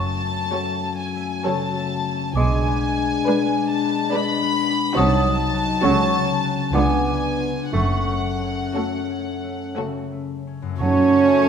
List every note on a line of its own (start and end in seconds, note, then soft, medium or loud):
0.00 0.34 F#1 medium
0.00 0.34 F#2 medium
0.00 2.40 F#2 soft
0.00 2.32 F#3 soft
0.00 0.52 A3 soft
0.00 0.21 C#4 soft
0.00 2.32 C#4 soft
0.00 0.95 A5 medium
0.22 0.83 C#4 soft
0.53 1.24 F#3 soft
0.53 1.14 A3 soft
0.53 1.24 F#4 soft
0.53 1.24 A4 soft
0.53 1.24 C#5 soft
0.84 2.05 C#4 soft
0.99 1.46 G#5 medium
1.16 1.75 A3 soft
1.46 2.40 C#3 soft
1.46 2.15 F#3 soft
1.46 2.15 F#4 soft
1.46 2.15 A4 soft
1.46 2.15 C#5 soft
1.46 2.36 A5 medium
1.76 2.40 A3 soft
2.06 2.40 C#4 soft
2.36 3.09 B1 medium
2.36 3.09 B2 medium
2.36 5.00 B2 soft
2.36 2.70 G#3 medium
2.36 4.97 G#3 soft
2.36 4.97 D4 soft
2.36 3.68 G#5 medium
2.36 2.78 D6 medium
2.67 3.26 B3 soft
2.97 3.55 D4 soft
3.26 3.93 G#3 medium
3.26 3.83 B3 soft
3.26 3.93 D4 medium
3.26 3.93 B4 medium
3.26 3.93 D5 soft
3.56 4.68 D4 soft
3.70 4.13 A5 medium
3.84 4.41 B3 soft
4.12 5.00 G#3 soft
4.12 4.77 G#3 medium
4.12 4.76 D4 soft
4.12 4.76 B4 medium
4.12 4.76 D5 medium
4.12 4.97 B5 medium
4.42 5.00 B3 soft
4.69 5.00 D4 soft
4.94 5.66 C2 medium
4.94 5.87 C3 medium
4.94 5.66 C3 medium
4.94 5.61 F#3 soft
4.94 5.28 F#3 medium
4.94 6.75 F#3 medium
4.94 5.61 D#4 medium
4.94 5.82 D#4 soft
4.94 5.60 F#4 medium
4.94 5.61 C5 soft
4.94 6.75 A5 medium
4.94 5.36 D#6 medium
5.25 6.79 F#3 soft
5.53 5.87 D#4 soft
5.53 6.43 F#4 soft
5.83 6.57 C#2 medium
5.83 6.74 C#3 medium
5.83 6.57 C#3 medium
5.83 6.17 F#3 medium
5.83 6.52 F#3 soft
5.83 6.52 C#4 medium
5.83 6.76 C#4 soft
5.83 6.52 F#4 medium
5.83 6.52 A4 medium
5.83 6.25 C#6 medium
6.13 6.42 C#4 soft
6.44 8.41 C#4 soft
6.44 6.79 F#4 soft
6.74 7.54 C#2 medium
6.74 7.77 C#3 soft
6.74 7.54 C#3 medium
6.74 7.49 G#3 soft
6.74 7.11 B3 soft
6.74 7.55 B3 medium
6.74 7.49 D4 medium
6.74 7.55 D4 soft
6.74 7.48 F4 soft
6.74 7.49 B4 soft
6.74 7.73 G#5 medium
6.74 7.19 D6 soft
7.06 7.77 B3 soft
7.39 7.77 D4 soft
7.39 7.77 F4 soft
7.72 8.56 F#1 soft
7.72 10.61 F#2 soft
7.72 8.56 F#2 medium
7.72 10.45 A3 soft
7.72 8.12 A3 soft
7.72 10.41 C#4 soft
7.72 9.73 F#5 medium
7.72 8.21 C#6 soft
8.07 8.74 A3 soft
8.42 9.08 C#4 soft
8.75 9.42 A3 soft
8.75 9.53 A3 soft
8.75 9.53 C#4 soft
8.75 9.52 F#4 soft
8.75 9.53 A4 soft
9.09 10.46 C#4 soft
9.43 10.11 A3 soft
9.77 10.84 C#3 soft
9.77 10.56 A3 soft
9.77 10.56 C#4 soft
9.77 10.57 F#4 soft
9.77 10.56 A4 soft
10.12 10.65 A3 soft
10.47 10.70 C#4 soft
10.62 11.49 F#2 soft
10.67 11.49 A3 soft
10.71 11.49 C#4 soft
10.76 11.49 F#4 soft
10.76 11.49 C#5 medium
10.80 11.49 F#2 soft
10.80 11.49 F#2 medium
10.80 11.30 F#3 medium
10.80 11.49 A3 soft
10.80 11.49 C#4 medium
10.80 11.49 F#4 medium
10.80 11.49 C#5 medium
10.80 11.49 A5 medium
11.29 11.49 A3 medium